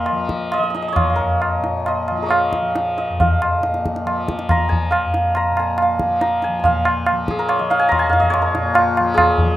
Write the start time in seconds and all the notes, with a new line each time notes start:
Already playing: F2 A#2 F3 A#4 D#5 F5
0.06 tabla na
0.12 F3
0.29 tabla ke
0.52 D#5, tabla na
0.58 F3 D#5
0.63 D#5
0.70 D#5
0.75 D#5, tabla te
0.82 D#5
0.88 D#5
0.92 C#5 F6, tabla na, tabla ge
0.97 C#6 D#6
1.04 G#5 A#5
1.10 F2 D#5 F5
1.15 A#4 C#5, tabla ge
1.42 tabla na
1.60 A#2, tabla te
1.86 D#5, tabla na
2.08 F3, tabla na
2.17 F4
2.22 G#4 A#4
2.26 C#5 D#5
2.31 F5, tabla na
2.53 tabla ke
2.61 F3
2.75 tabla te
2.98 D#5, tabla te
3.09 F2
3.20 F5, tabla tin, tabla ge
3.42 tabla na
3.59 A#2
3.63 tabla te
3.74 tabla te
3.86 tabla ke
3.96 tabla te
4.05 F3, tabla na
4.28 tabla ke
4.39 tabla te
4.49 A#5, tabla na, tabla ge
4.55 F3
4.69 G#5, tabla ge
4.91 F5, tabla na
5.04 F2
5.14 tabla te
5.35 A#5, tabla na
5.51 A#2
5.57 G#5, tabla na
5.78 tabla na
5.82 F5
5.99 F3, tabla ke
6.21 A#5, tabla te
6.42 G#5, tabla te
6.48 F3
6.59 G#5
6.64 A#2 F5, tabla tin, tabla ge
6.85 tabla na
7.06 tabla na
7.12 F3
7.28 G#4, tabla ke
7.39 A#4
7.49 C#5, tabla na
7.59 F3 D#5
7.70 F5, tabla te
7.79 G#5
7.89 A#5, tabla na, tabla ge
7.99 G#5
8.08 F2 F5
8.13 tabla te
8.20 D#5, tabla ge
8.30 C#5, tabla na
8.42 A#4
8.54 A#2, tabla te
8.74 F4, tabla na
8.97 F3, tabla na
9.14 G#4, tabla na, tabla ge
9.38 tabla ge
9.46 F3